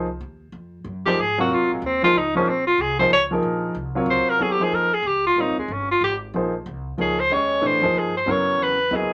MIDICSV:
0, 0, Header, 1, 5, 480
1, 0, Start_track
1, 0, Tempo, 322407
1, 792, Time_signature, 3, 2, 24, 8
1, 13593, End_track
2, 0, Start_track
2, 0, Title_t, "Tenor saxophone"
2, 0, Program_c, 0, 66
2, 1582, Note_on_c, 0, 67, 97
2, 1793, Note_on_c, 0, 68, 102
2, 1815, Note_off_c, 0, 67, 0
2, 2065, Note_off_c, 0, 68, 0
2, 2090, Note_on_c, 0, 66, 94
2, 2291, Note_on_c, 0, 65, 84
2, 2314, Note_off_c, 0, 66, 0
2, 2554, Note_off_c, 0, 65, 0
2, 2584, Note_on_c, 0, 56, 56
2, 2768, Note_on_c, 0, 60, 89
2, 2790, Note_off_c, 0, 56, 0
2, 3027, Note_off_c, 0, 60, 0
2, 3036, Note_on_c, 0, 65, 112
2, 3238, Note_on_c, 0, 63, 91
2, 3261, Note_off_c, 0, 65, 0
2, 3507, Note_off_c, 0, 63, 0
2, 3519, Note_on_c, 0, 61, 89
2, 3709, Note_on_c, 0, 60, 84
2, 3731, Note_off_c, 0, 61, 0
2, 3968, Note_off_c, 0, 60, 0
2, 3977, Note_on_c, 0, 65, 97
2, 4189, Note_on_c, 0, 68, 92
2, 4211, Note_off_c, 0, 65, 0
2, 4448, Note_off_c, 0, 68, 0
2, 4457, Note_on_c, 0, 72, 94
2, 4622, Note_off_c, 0, 72, 0
2, 4661, Note_on_c, 0, 73, 95
2, 4827, Note_off_c, 0, 73, 0
2, 6107, Note_on_c, 0, 72, 93
2, 6394, Note_on_c, 0, 70, 104
2, 6416, Note_off_c, 0, 72, 0
2, 6580, Note_on_c, 0, 68, 84
2, 6602, Note_off_c, 0, 70, 0
2, 6728, Note_on_c, 0, 67, 90
2, 6750, Note_off_c, 0, 68, 0
2, 6899, Note_on_c, 0, 68, 87
2, 6921, Note_off_c, 0, 67, 0
2, 7064, Note_on_c, 0, 70, 94
2, 7086, Note_off_c, 0, 68, 0
2, 7351, Note_on_c, 0, 68, 96
2, 7373, Note_off_c, 0, 70, 0
2, 7550, Note_on_c, 0, 67, 84
2, 7572, Note_off_c, 0, 68, 0
2, 7823, Note_off_c, 0, 67, 0
2, 7843, Note_on_c, 0, 65, 98
2, 8045, Note_on_c, 0, 63, 86
2, 8067, Note_off_c, 0, 65, 0
2, 8310, Note_off_c, 0, 63, 0
2, 8322, Note_on_c, 0, 56, 68
2, 8527, Note_on_c, 0, 61, 75
2, 8549, Note_off_c, 0, 56, 0
2, 8792, Note_off_c, 0, 61, 0
2, 8803, Note_on_c, 0, 65, 99
2, 8957, Note_off_c, 0, 65, 0
2, 8993, Note_on_c, 0, 67, 93
2, 9156, Note_off_c, 0, 67, 0
2, 10440, Note_on_c, 0, 68, 90
2, 10715, Note_on_c, 0, 72, 102
2, 10737, Note_off_c, 0, 68, 0
2, 10913, Note_on_c, 0, 73, 103
2, 10935, Note_off_c, 0, 72, 0
2, 11412, Note_on_c, 0, 72, 95
2, 11435, Note_off_c, 0, 73, 0
2, 11885, Note_on_c, 0, 68, 76
2, 11908, Note_off_c, 0, 72, 0
2, 12152, Note_off_c, 0, 68, 0
2, 12166, Note_on_c, 0, 72, 96
2, 12372, Note_on_c, 0, 73, 111
2, 12395, Note_off_c, 0, 72, 0
2, 12851, Note_on_c, 0, 71, 94
2, 12873, Note_off_c, 0, 73, 0
2, 13329, Note_on_c, 0, 68, 77
2, 13351, Note_off_c, 0, 71, 0
2, 13588, Note_off_c, 0, 68, 0
2, 13593, End_track
3, 0, Start_track
3, 0, Title_t, "Grand piano"
3, 0, Program_c, 1, 0
3, 1577, Note_on_c, 1, 58, 64
3, 1579, Note_on_c, 1, 53, 70
3, 1589, Note_on_c, 1, 63, 65
3, 1596, Note_on_c, 1, 68, 66
3, 1601, Note_on_c, 1, 72, 79
3, 1738, Note_off_c, 1, 58, 0
3, 1739, Note_off_c, 1, 53, 0
3, 1744, Note_off_c, 1, 63, 0
3, 1748, Note_off_c, 1, 68, 0
3, 1750, Note_off_c, 1, 72, 0
3, 2056, Note_on_c, 1, 54, 78
3, 2060, Note_on_c, 1, 48, 74
3, 2073, Note_on_c, 1, 70, 73
3, 2076, Note_on_c, 1, 65, 75
3, 2082, Note_on_c, 1, 73, 84
3, 2678, Note_off_c, 1, 54, 0
3, 2680, Note_off_c, 1, 48, 0
3, 2687, Note_off_c, 1, 70, 0
3, 2688, Note_off_c, 1, 65, 0
3, 2691, Note_off_c, 1, 73, 0
3, 3017, Note_on_c, 1, 53, 76
3, 3029, Note_on_c, 1, 58, 65
3, 3029, Note_on_c, 1, 63, 68
3, 3033, Note_on_c, 1, 68, 68
3, 3050, Note_on_c, 1, 72, 79
3, 3177, Note_off_c, 1, 53, 0
3, 3183, Note_off_c, 1, 58, 0
3, 3183, Note_off_c, 1, 63, 0
3, 3185, Note_off_c, 1, 68, 0
3, 3193, Note_off_c, 1, 72, 0
3, 3498, Note_on_c, 1, 53, 86
3, 3512, Note_on_c, 1, 58, 76
3, 3520, Note_on_c, 1, 68, 76
3, 3524, Note_on_c, 1, 63, 74
3, 3526, Note_on_c, 1, 72, 85
3, 3657, Note_off_c, 1, 53, 0
3, 3664, Note_off_c, 1, 58, 0
3, 3668, Note_off_c, 1, 68, 0
3, 3670, Note_off_c, 1, 63, 0
3, 3671, Note_off_c, 1, 72, 0
3, 4451, Note_on_c, 1, 53, 71
3, 4457, Note_on_c, 1, 58, 67
3, 4469, Note_on_c, 1, 63, 68
3, 4473, Note_on_c, 1, 68, 68
3, 4477, Note_on_c, 1, 72, 80
3, 4613, Note_off_c, 1, 53, 0
3, 4616, Note_off_c, 1, 58, 0
3, 4622, Note_off_c, 1, 63, 0
3, 4624, Note_off_c, 1, 68, 0
3, 4626, Note_off_c, 1, 72, 0
3, 4923, Note_on_c, 1, 53, 78
3, 4932, Note_on_c, 1, 58, 72
3, 4941, Note_on_c, 1, 68, 69
3, 4942, Note_on_c, 1, 63, 71
3, 4953, Note_on_c, 1, 70, 88
3, 5550, Note_off_c, 1, 53, 0
3, 5555, Note_off_c, 1, 58, 0
3, 5559, Note_off_c, 1, 68, 0
3, 5560, Note_off_c, 1, 63, 0
3, 5565, Note_off_c, 1, 70, 0
3, 5883, Note_on_c, 1, 54, 76
3, 5887, Note_on_c, 1, 48, 72
3, 5893, Note_on_c, 1, 70, 68
3, 5897, Note_on_c, 1, 65, 70
3, 5915, Note_on_c, 1, 73, 83
3, 6510, Note_off_c, 1, 54, 0
3, 6512, Note_off_c, 1, 48, 0
3, 6515, Note_off_c, 1, 70, 0
3, 6517, Note_off_c, 1, 65, 0
3, 6526, Note_off_c, 1, 73, 0
3, 6532, Note_on_c, 1, 54, 60
3, 6547, Note_on_c, 1, 59, 56
3, 6549, Note_on_c, 1, 64, 54
3, 6556, Note_on_c, 1, 69, 54
3, 6559, Note_on_c, 1, 73, 66
3, 6804, Note_off_c, 1, 54, 0
3, 6811, Note_off_c, 1, 59, 0
3, 6812, Note_off_c, 1, 64, 0
3, 6816, Note_off_c, 1, 69, 0
3, 6817, Note_off_c, 1, 73, 0
3, 6843, Note_on_c, 1, 53, 61
3, 6857, Note_on_c, 1, 58, 59
3, 6858, Note_on_c, 1, 63, 58
3, 6863, Note_on_c, 1, 68, 58
3, 6865, Note_on_c, 1, 72, 66
3, 7263, Note_off_c, 1, 53, 0
3, 7270, Note_off_c, 1, 58, 0
3, 7271, Note_off_c, 1, 63, 0
3, 7273, Note_off_c, 1, 68, 0
3, 7274, Note_off_c, 1, 72, 0
3, 8003, Note_on_c, 1, 55, 55
3, 8009, Note_on_c, 1, 70, 53
3, 8011, Note_on_c, 1, 60, 53
3, 8016, Note_on_c, 1, 65, 53
3, 8027, Note_on_c, 1, 73, 61
3, 8260, Note_off_c, 1, 55, 0
3, 8263, Note_off_c, 1, 70, 0
3, 8264, Note_off_c, 1, 60, 0
3, 8266, Note_off_c, 1, 65, 0
3, 8272, Note_off_c, 1, 73, 0
3, 9442, Note_on_c, 1, 53, 66
3, 9451, Note_on_c, 1, 63, 61
3, 9454, Note_on_c, 1, 58, 60
3, 9465, Note_on_c, 1, 68, 60
3, 9470, Note_on_c, 1, 72, 71
3, 9700, Note_off_c, 1, 53, 0
3, 9705, Note_off_c, 1, 63, 0
3, 9706, Note_off_c, 1, 58, 0
3, 9712, Note_off_c, 1, 68, 0
3, 9714, Note_off_c, 1, 72, 0
3, 10385, Note_on_c, 1, 53, 61
3, 10398, Note_on_c, 1, 58, 58
3, 10404, Note_on_c, 1, 63, 57
3, 10411, Note_on_c, 1, 68, 58
3, 10424, Note_on_c, 1, 73, 63
3, 10652, Note_off_c, 1, 53, 0
3, 10658, Note_off_c, 1, 58, 0
3, 10662, Note_off_c, 1, 63, 0
3, 10665, Note_off_c, 1, 68, 0
3, 10672, Note_off_c, 1, 73, 0
3, 10885, Note_on_c, 1, 56, 63
3, 10887, Note_on_c, 1, 61, 61
3, 10894, Note_on_c, 1, 67, 59
3, 10895, Note_on_c, 1, 75, 71
3, 10904, Note_on_c, 1, 73, 62
3, 11326, Note_off_c, 1, 67, 0
3, 11334, Note_on_c, 1, 57, 57
3, 11339, Note_off_c, 1, 56, 0
3, 11339, Note_on_c, 1, 52, 63
3, 11340, Note_off_c, 1, 61, 0
3, 11344, Note_off_c, 1, 75, 0
3, 11349, Note_off_c, 1, 73, 0
3, 11349, Note_on_c, 1, 67, 59
3, 11350, Note_on_c, 1, 62, 56
3, 11358, Note_on_c, 1, 71, 74
3, 11607, Note_off_c, 1, 57, 0
3, 11610, Note_off_c, 1, 52, 0
3, 11614, Note_off_c, 1, 67, 0
3, 11615, Note_off_c, 1, 62, 0
3, 11619, Note_off_c, 1, 71, 0
3, 11631, Note_on_c, 1, 53, 67
3, 11640, Note_on_c, 1, 58, 60
3, 11644, Note_on_c, 1, 63, 62
3, 11651, Note_on_c, 1, 68, 61
3, 11663, Note_on_c, 1, 72, 70
3, 12059, Note_off_c, 1, 53, 0
3, 12064, Note_off_c, 1, 58, 0
3, 12066, Note_off_c, 1, 63, 0
3, 12069, Note_off_c, 1, 68, 0
3, 12075, Note_off_c, 1, 72, 0
3, 12297, Note_on_c, 1, 49, 68
3, 12305, Note_on_c, 1, 54, 64
3, 12316, Note_on_c, 1, 59, 60
3, 12323, Note_on_c, 1, 64, 62
3, 12329, Note_on_c, 1, 70, 79
3, 13020, Note_off_c, 1, 49, 0
3, 13024, Note_off_c, 1, 54, 0
3, 13030, Note_off_c, 1, 59, 0
3, 13033, Note_off_c, 1, 64, 0
3, 13036, Note_off_c, 1, 70, 0
3, 13262, Note_on_c, 1, 54, 61
3, 13264, Note_on_c, 1, 59, 57
3, 13268, Note_on_c, 1, 64, 56
3, 13283, Note_on_c, 1, 70, 54
3, 13291, Note_on_c, 1, 75, 68
3, 13593, Note_off_c, 1, 54, 0
3, 13593, Note_off_c, 1, 59, 0
3, 13593, Note_off_c, 1, 64, 0
3, 13593, Note_off_c, 1, 70, 0
3, 13593, Note_off_c, 1, 75, 0
3, 13593, End_track
4, 0, Start_track
4, 0, Title_t, "Upright bass"
4, 0, Program_c, 2, 32
4, 0, Note_on_c, 2, 36, 87
4, 297, Note_off_c, 2, 36, 0
4, 306, Note_on_c, 2, 39, 91
4, 769, Note_off_c, 2, 39, 0
4, 778, Note_on_c, 2, 41, 86
4, 1250, Note_off_c, 2, 41, 0
4, 1257, Note_on_c, 2, 42, 93
4, 1729, Note_off_c, 2, 42, 0
4, 1743, Note_on_c, 2, 44, 98
4, 2211, Note_off_c, 2, 44, 0
4, 2227, Note_on_c, 2, 41, 89
4, 2388, Note_on_c, 2, 37, 55
4, 2410, Note_off_c, 2, 41, 0
4, 2532, Note_off_c, 2, 37, 0
4, 2540, Note_on_c, 2, 34, 66
4, 2693, Note_off_c, 2, 34, 0
4, 2706, Note_on_c, 2, 39, 98
4, 3167, Note_off_c, 2, 39, 0
4, 3176, Note_on_c, 2, 37, 96
4, 3647, Note_off_c, 2, 37, 0
4, 3659, Note_on_c, 2, 34, 88
4, 4128, Note_off_c, 2, 34, 0
4, 4138, Note_on_c, 2, 36, 96
4, 4608, Note_off_c, 2, 36, 0
4, 4621, Note_on_c, 2, 37, 99
4, 5089, Note_off_c, 2, 37, 0
4, 5100, Note_on_c, 2, 34, 90
4, 5568, Note_off_c, 2, 34, 0
4, 5577, Note_on_c, 2, 36, 96
4, 6034, Note_off_c, 2, 36, 0
4, 6043, Note_on_c, 2, 37, 103
4, 6327, Note_off_c, 2, 37, 0
4, 6529, Note_on_c, 2, 39, 82
4, 7003, Note_off_c, 2, 39, 0
4, 7024, Note_on_c, 2, 41, 89
4, 7473, Note_off_c, 2, 41, 0
4, 7482, Note_on_c, 2, 37, 91
4, 7960, Note_off_c, 2, 37, 0
4, 7980, Note_on_c, 2, 34, 83
4, 8149, Note_on_c, 2, 32, 52
4, 8171, Note_off_c, 2, 34, 0
4, 8293, Note_off_c, 2, 32, 0
4, 8302, Note_on_c, 2, 27, 62
4, 8453, Note_off_c, 2, 27, 0
4, 8460, Note_on_c, 2, 31, 90
4, 8930, Note_off_c, 2, 31, 0
4, 8947, Note_on_c, 2, 32, 94
4, 9414, Note_off_c, 2, 32, 0
4, 9433, Note_on_c, 2, 34, 87
4, 9897, Note_off_c, 2, 34, 0
4, 9913, Note_on_c, 2, 36, 96
4, 10377, Note_off_c, 2, 36, 0
4, 10394, Note_on_c, 2, 37, 89
4, 10858, Note_off_c, 2, 37, 0
4, 10866, Note_on_c, 2, 39, 86
4, 11334, Note_off_c, 2, 39, 0
4, 11343, Note_on_c, 2, 46, 94
4, 11501, Note_off_c, 2, 46, 0
4, 11501, Note_on_c, 2, 44, 53
4, 11660, Note_off_c, 2, 44, 0
4, 11669, Note_on_c, 2, 39, 65
4, 11819, Note_off_c, 2, 39, 0
4, 11833, Note_on_c, 2, 43, 89
4, 12298, Note_off_c, 2, 43, 0
4, 12306, Note_on_c, 2, 42, 87
4, 12774, Note_off_c, 2, 42, 0
4, 12781, Note_on_c, 2, 40, 88
4, 13252, Note_off_c, 2, 40, 0
4, 13261, Note_on_c, 2, 39, 92
4, 13423, Note_off_c, 2, 39, 0
4, 13423, Note_on_c, 2, 37, 59
4, 13575, Note_off_c, 2, 37, 0
4, 13593, End_track
5, 0, Start_track
5, 0, Title_t, "Muted upright bass strokes"
5, 6345, Note_on_c, 9, 29, 40
5, 6494, Note_off_c, 9, 29, 0
5, 13593, End_track
0, 0, End_of_file